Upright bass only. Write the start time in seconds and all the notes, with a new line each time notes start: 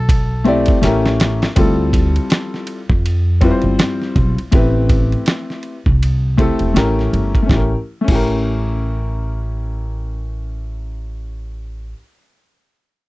Already playing: B1
0.83 A1
1.57 D2
2.90 F2
3.64 G1
4.16 B1
4.53 A1
5.86 C2
6.61 E1
6.76 A1
7.13 G1
7.49 A1
8.08 A1